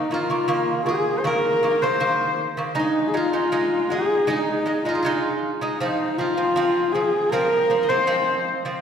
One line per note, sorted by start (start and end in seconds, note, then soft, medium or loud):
0.00 0.13 D#4 medium
0.00 2.45 D#4 medium
0.11 0.27 D#3 medium
0.11 0.27 A#3 medium
0.11 0.86 F4 medium
0.11 2.66 F4 medium
0.30 0.46 D#3 medium
0.30 0.46 A#3 medium
0.48 0.79 D#3 medium
0.48 0.80 A#3 loud
0.86 1.17 D#3 medium
0.86 1.18 A#3 medium
0.86 1.20 G#4 medium
0.86 3.16 G#4 medium
1.18 1.27 C5 medium
1.24 1.55 D#3 medium
1.24 1.56 A#3 medium
1.24 1.83 A#4 loud
1.24 3.39 A#4 medium
1.63 1.79 D#3 medium
1.63 1.79 A#3 medium
1.82 1.98 D#3 medium
1.82 1.98 A#3 medium
1.82 2.39 C5 loud
1.82 3.81 C5 medium
2.00 2.46 D#3 medium
2.00 2.47 A#3 loud
2.57 2.73 D#3 medium
2.57 2.74 A#3 medium
2.75 3.06 G#3 medium
2.75 3.07 D#4 loud
2.75 3.09 D#4 medium
2.79 4.29 D#4 medium
3.07 3.16 G#4 medium
3.14 3.30 G#3 medium
3.14 3.30 D#4 medium
3.14 3.91 F4 medium
3.14 4.88 F4 medium
3.33 3.49 G#3 medium
3.33 3.49 D#4 medium
3.52 3.83 G#3 medium
3.52 3.83 D#4 loud
3.90 4.21 G#3 medium
3.90 4.22 D#4 medium
3.90 4.29 G#4 medium
3.90 4.95 G#4 medium
4.27 4.58 G#3 medium
4.27 4.85 D#4 loud
4.27 4.59 D#4 loud
4.27 5.83 D#4 medium
4.66 4.81 G#3 medium
4.66 4.82 D#4 medium
4.85 5.01 G#3 medium
4.85 5.01 D#4 medium
4.85 5.39 F4 medium
4.85 5.02 F4 medium
4.95 7.23 G#4 medium
5.02 5.50 G#3 medium
5.02 5.51 D#4 loud
5.02 6.20 F4 medium
5.61 5.77 G#3 medium
5.61 5.77 D#4 medium
5.80 6.11 F3 medium
5.80 6.11 C4 loud
5.80 6.19 D#4 medium
5.80 8.54 D#4 medium
6.17 6.33 F3 medium
6.17 6.34 C4 medium
6.17 6.93 F4 medium
6.17 8.73 F4 medium
6.37 6.52 F3 medium
6.37 6.53 C4 medium
6.56 6.86 F3 loud
6.56 6.87 C4 loud
6.92 7.25 F3 medium
6.92 7.25 C4 medium
6.92 7.32 G#4 medium
7.30 7.62 F3 medium
7.30 7.63 C4 loud
7.30 7.90 A#4 loud
7.30 8.81 A#4 medium
7.70 7.85 F3 medium
7.70 7.85 C4 medium
7.83 8.81 D#5 medium
7.88 8.04 F3 medium
7.88 8.04 C4 medium
7.88 8.45 C5 medium
7.88 8.81 C5 medium
8.07 8.53 F3 medium
8.07 8.53 C4 loud
8.65 8.80 F3 medium
8.65 8.80 C4 medium